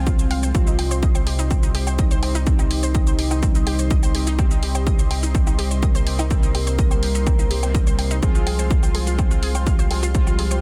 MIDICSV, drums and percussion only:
0, 0, Header, 1, 2, 480
1, 0, Start_track
1, 0, Key_signature, -3, "minor"
1, 0, Tempo, 480000
1, 546, Time_signature, 4, 2, 24, 8
1, 10612, End_track
2, 0, Start_track
2, 0, Title_t, "Drums"
2, 67, Note_on_c, 9, 36, 110
2, 67, Note_on_c, 9, 82, 58
2, 167, Note_off_c, 9, 36, 0
2, 167, Note_off_c, 9, 82, 0
2, 190, Note_on_c, 9, 82, 56
2, 290, Note_off_c, 9, 82, 0
2, 307, Note_on_c, 9, 46, 89
2, 307, Note_on_c, 9, 77, 59
2, 407, Note_off_c, 9, 46, 0
2, 407, Note_off_c, 9, 77, 0
2, 430, Note_on_c, 9, 82, 59
2, 530, Note_off_c, 9, 82, 0
2, 547, Note_on_c, 9, 36, 125
2, 547, Note_on_c, 9, 82, 58
2, 647, Note_off_c, 9, 36, 0
2, 647, Note_off_c, 9, 82, 0
2, 670, Note_on_c, 9, 82, 58
2, 770, Note_off_c, 9, 82, 0
2, 787, Note_on_c, 9, 46, 104
2, 787, Note_on_c, 9, 77, 55
2, 887, Note_off_c, 9, 46, 0
2, 887, Note_off_c, 9, 77, 0
2, 910, Note_on_c, 9, 82, 61
2, 1010, Note_off_c, 9, 82, 0
2, 1027, Note_on_c, 9, 36, 122
2, 1027, Note_on_c, 9, 82, 57
2, 1127, Note_off_c, 9, 36, 0
2, 1127, Note_off_c, 9, 82, 0
2, 1150, Note_on_c, 9, 77, 54
2, 1150, Note_on_c, 9, 82, 57
2, 1250, Note_off_c, 9, 77, 0
2, 1250, Note_off_c, 9, 82, 0
2, 1267, Note_on_c, 9, 46, 91
2, 1367, Note_off_c, 9, 46, 0
2, 1390, Note_on_c, 9, 82, 64
2, 1490, Note_off_c, 9, 82, 0
2, 1506, Note_on_c, 9, 77, 54
2, 1506, Note_on_c, 9, 82, 59
2, 1507, Note_on_c, 9, 36, 125
2, 1606, Note_off_c, 9, 77, 0
2, 1606, Note_off_c, 9, 82, 0
2, 1607, Note_off_c, 9, 36, 0
2, 1630, Note_on_c, 9, 82, 61
2, 1730, Note_off_c, 9, 82, 0
2, 1746, Note_on_c, 9, 46, 105
2, 1846, Note_off_c, 9, 46, 0
2, 1870, Note_on_c, 9, 77, 56
2, 1870, Note_on_c, 9, 82, 59
2, 1970, Note_off_c, 9, 77, 0
2, 1970, Note_off_c, 9, 82, 0
2, 1986, Note_on_c, 9, 36, 118
2, 1986, Note_on_c, 9, 82, 58
2, 2086, Note_off_c, 9, 36, 0
2, 2086, Note_off_c, 9, 82, 0
2, 2110, Note_on_c, 9, 82, 56
2, 2210, Note_off_c, 9, 82, 0
2, 2226, Note_on_c, 9, 46, 93
2, 2226, Note_on_c, 9, 77, 57
2, 2327, Note_off_c, 9, 46, 0
2, 2327, Note_off_c, 9, 77, 0
2, 2350, Note_on_c, 9, 82, 60
2, 2450, Note_off_c, 9, 82, 0
2, 2466, Note_on_c, 9, 36, 126
2, 2466, Note_on_c, 9, 82, 56
2, 2566, Note_off_c, 9, 36, 0
2, 2566, Note_off_c, 9, 82, 0
2, 2590, Note_on_c, 9, 77, 52
2, 2590, Note_on_c, 9, 82, 58
2, 2690, Note_off_c, 9, 77, 0
2, 2690, Note_off_c, 9, 82, 0
2, 2706, Note_on_c, 9, 46, 109
2, 2806, Note_off_c, 9, 46, 0
2, 2830, Note_on_c, 9, 82, 64
2, 2930, Note_off_c, 9, 82, 0
2, 2946, Note_on_c, 9, 36, 123
2, 2946, Note_on_c, 9, 77, 55
2, 2946, Note_on_c, 9, 82, 56
2, 3046, Note_off_c, 9, 36, 0
2, 3046, Note_off_c, 9, 77, 0
2, 3046, Note_off_c, 9, 82, 0
2, 3070, Note_on_c, 9, 82, 59
2, 3170, Note_off_c, 9, 82, 0
2, 3186, Note_on_c, 9, 46, 98
2, 3286, Note_off_c, 9, 46, 0
2, 3310, Note_on_c, 9, 77, 56
2, 3310, Note_on_c, 9, 82, 61
2, 3410, Note_off_c, 9, 77, 0
2, 3410, Note_off_c, 9, 82, 0
2, 3426, Note_on_c, 9, 36, 120
2, 3426, Note_on_c, 9, 82, 61
2, 3526, Note_off_c, 9, 36, 0
2, 3526, Note_off_c, 9, 82, 0
2, 3550, Note_on_c, 9, 82, 59
2, 3650, Note_off_c, 9, 82, 0
2, 3667, Note_on_c, 9, 46, 111
2, 3667, Note_on_c, 9, 77, 53
2, 3767, Note_off_c, 9, 46, 0
2, 3767, Note_off_c, 9, 77, 0
2, 3789, Note_on_c, 9, 82, 64
2, 3889, Note_off_c, 9, 82, 0
2, 3906, Note_on_c, 9, 36, 127
2, 3906, Note_on_c, 9, 82, 60
2, 4006, Note_off_c, 9, 36, 0
2, 4006, Note_off_c, 9, 82, 0
2, 4030, Note_on_c, 9, 77, 54
2, 4030, Note_on_c, 9, 82, 62
2, 4129, Note_off_c, 9, 77, 0
2, 4129, Note_off_c, 9, 82, 0
2, 4146, Note_on_c, 9, 46, 101
2, 4246, Note_off_c, 9, 46, 0
2, 4270, Note_on_c, 9, 82, 60
2, 4370, Note_off_c, 9, 82, 0
2, 4386, Note_on_c, 9, 36, 124
2, 4386, Note_on_c, 9, 77, 49
2, 4386, Note_on_c, 9, 82, 58
2, 4486, Note_off_c, 9, 36, 0
2, 4486, Note_off_c, 9, 77, 0
2, 4486, Note_off_c, 9, 82, 0
2, 4510, Note_on_c, 9, 82, 59
2, 4610, Note_off_c, 9, 82, 0
2, 4626, Note_on_c, 9, 46, 111
2, 4726, Note_off_c, 9, 46, 0
2, 4750, Note_on_c, 9, 77, 56
2, 4750, Note_on_c, 9, 82, 63
2, 4850, Note_off_c, 9, 77, 0
2, 4850, Note_off_c, 9, 82, 0
2, 4866, Note_on_c, 9, 36, 124
2, 4867, Note_on_c, 9, 82, 58
2, 4966, Note_off_c, 9, 36, 0
2, 4967, Note_off_c, 9, 82, 0
2, 4989, Note_on_c, 9, 82, 57
2, 5089, Note_off_c, 9, 82, 0
2, 5107, Note_on_c, 9, 46, 91
2, 5107, Note_on_c, 9, 77, 51
2, 5207, Note_off_c, 9, 46, 0
2, 5207, Note_off_c, 9, 77, 0
2, 5230, Note_on_c, 9, 82, 59
2, 5330, Note_off_c, 9, 82, 0
2, 5346, Note_on_c, 9, 36, 127
2, 5347, Note_on_c, 9, 82, 61
2, 5446, Note_off_c, 9, 36, 0
2, 5447, Note_off_c, 9, 82, 0
2, 5470, Note_on_c, 9, 77, 53
2, 5470, Note_on_c, 9, 82, 59
2, 5570, Note_off_c, 9, 77, 0
2, 5570, Note_off_c, 9, 82, 0
2, 5587, Note_on_c, 9, 46, 106
2, 5687, Note_off_c, 9, 46, 0
2, 5710, Note_on_c, 9, 82, 60
2, 5810, Note_off_c, 9, 82, 0
2, 5826, Note_on_c, 9, 36, 122
2, 5827, Note_on_c, 9, 77, 53
2, 5827, Note_on_c, 9, 82, 60
2, 5926, Note_off_c, 9, 36, 0
2, 5927, Note_off_c, 9, 77, 0
2, 5927, Note_off_c, 9, 82, 0
2, 5950, Note_on_c, 9, 82, 56
2, 6050, Note_off_c, 9, 82, 0
2, 6066, Note_on_c, 9, 46, 102
2, 6166, Note_off_c, 9, 46, 0
2, 6190, Note_on_c, 9, 77, 55
2, 6190, Note_on_c, 9, 82, 61
2, 6290, Note_off_c, 9, 77, 0
2, 6290, Note_off_c, 9, 82, 0
2, 6306, Note_on_c, 9, 36, 127
2, 6307, Note_on_c, 9, 82, 55
2, 6406, Note_off_c, 9, 36, 0
2, 6407, Note_off_c, 9, 82, 0
2, 6430, Note_on_c, 9, 82, 54
2, 6530, Note_off_c, 9, 82, 0
2, 6547, Note_on_c, 9, 46, 107
2, 6547, Note_on_c, 9, 77, 51
2, 6647, Note_off_c, 9, 46, 0
2, 6647, Note_off_c, 9, 77, 0
2, 6670, Note_on_c, 9, 82, 58
2, 6770, Note_off_c, 9, 82, 0
2, 6786, Note_on_c, 9, 36, 122
2, 6787, Note_on_c, 9, 82, 54
2, 6886, Note_off_c, 9, 36, 0
2, 6887, Note_off_c, 9, 82, 0
2, 6910, Note_on_c, 9, 77, 53
2, 6910, Note_on_c, 9, 82, 55
2, 7010, Note_off_c, 9, 77, 0
2, 7010, Note_off_c, 9, 82, 0
2, 7027, Note_on_c, 9, 46, 95
2, 7127, Note_off_c, 9, 46, 0
2, 7150, Note_on_c, 9, 82, 58
2, 7250, Note_off_c, 9, 82, 0
2, 7266, Note_on_c, 9, 36, 122
2, 7267, Note_on_c, 9, 77, 49
2, 7267, Note_on_c, 9, 82, 60
2, 7366, Note_off_c, 9, 36, 0
2, 7367, Note_off_c, 9, 77, 0
2, 7367, Note_off_c, 9, 82, 0
2, 7390, Note_on_c, 9, 82, 58
2, 7490, Note_off_c, 9, 82, 0
2, 7507, Note_on_c, 9, 46, 112
2, 7607, Note_off_c, 9, 46, 0
2, 7630, Note_on_c, 9, 77, 54
2, 7630, Note_on_c, 9, 82, 57
2, 7730, Note_off_c, 9, 77, 0
2, 7730, Note_off_c, 9, 82, 0
2, 7746, Note_on_c, 9, 36, 127
2, 7747, Note_on_c, 9, 82, 54
2, 7846, Note_off_c, 9, 36, 0
2, 7847, Note_off_c, 9, 82, 0
2, 7870, Note_on_c, 9, 82, 57
2, 7970, Note_off_c, 9, 82, 0
2, 7986, Note_on_c, 9, 46, 96
2, 7986, Note_on_c, 9, 77, 50
2, 8086, Note_off_c, 9, 46, 0
2, 8086, Note_off_c, 9, 77, 0
2, 8110, Note_on_c, 9, 82, 60
2, 8210, Note_off_c, 9, 82, 0
2, 8226, Note_on_c, 9, 36, 119
2, 8227, Note_on_c, 9, 82, 55
2, 8326, Note_off_c, 9, 36, 0
2, 8327, Note_off_c, 9, 82, 0
2, 8350, Note_on_c, 9, 82, 53
2, 8450, Note_off_c, 9, 82, 0
2, 8467, Note_on_c, 9, 46, 106
2, 8467, Note_on_c, 9, 77, 52
2, 8567, Note_off_c, 9, 46, 0
2, 8567, Note_off_c, 9, 77, 0
2, 8590, Note_on_c, 9, 82, 56
2, 8690, Note_off_c, 9, 82, 0
2, 8706, Note_on_c, 9, 36, 124
2, 8707, Note_on_c, 9, 82, 54
2, 8806, Note_off_c, 9, 36, 0
2, 8807, Note_off_c, 9, 82, 0
2, 8830, Note_on_c, 9, 77, 50
2, 8830, Note_on_c, 9, 82, 52
2, 8930, Note_off_c, 9, 77, 0
2, 8930, Note_off_c, 9, 82, 0
2, 8946, Note_on_c, 9, 46, 93
2, 9046, Note_off_c, 9, 46, 0
2, 9070, Note_on_c, 9, 82, 56
2, 9170, Note_off_c, 9, 82, 0
2, 9186, Note_on_c, 9, 36, 120
2, 9186, Note_on_c, 9, 77, 52
2, 9186, Note_on_c, 9, 82, 55
2, 9286, Note_off_c, 9, 36, 0
2, 9286, Note_off_c, 9, 77, 0
2, 9286, Note_off_c, 9, 82, 0
2, 9310, Note_on_c, 9, 82, 55
2, 9410, Note_off_c, 9, 82, 0
2, 9426, Note_on_c, 9, 46, 105
2, 9526, Note_off_c, 9, 46, 0
2, 9550, Note_on_c, 9, 77, 52
2, 9550, Note_on_c, 9, 82, 56
2, 9650, Note_off_c, 9, 77, 0
2, 9650, Note_off_c, 9, 82, 0
2, 9666, Note_on_c, 9, 36, 120
2, 9666, Note_on_c, 9, 82, 54
2, 9766, Note_off_c, 9, 36, 0
2, 9766, Note_off_c, 9, 82, 0
2, 9790, Note_on_c, 9, 82, 54
2, 9890, Note_off_c, 9, 82, 0
2, 9906, Note_on_c, 9, 46, 94
2, 9906, Note_on_c, 9, 77, 52
2, 10006, Note_off_c, 9, 46, 0
2, 10006, Note_off_c, 9, 77, 0
2, 10029, Note_on_c, 9, 82, 58
2, 10129, Note_off_c, 9, 82, 0
2, 10146, Note_on_c, 9, 36, 116
2, 10146, Note_on_c, 9, 82, 54
2, 10246, Note_off_c, 9, 36, 0
2, 10246, Note_off_c, 9, 82, 0
2, 10270, Note_on_c, 9, 77, 52
2, 10270, Note_on_c, 9, 82, 53
2, 10370, Note_off_c, 9, 77, 0
2, 10370, Note_off_c, 9, 82, 0
2, 10387, Note_on_c, 9, 46, 103
2, 10487, Note_off_c, 9, 46, 0
2, 10510, Note_on_c, 9, 82, 57
2, 10610, Note_off_c, 9, 82, 0
2, 10612, End_track
0, 0, End_of_file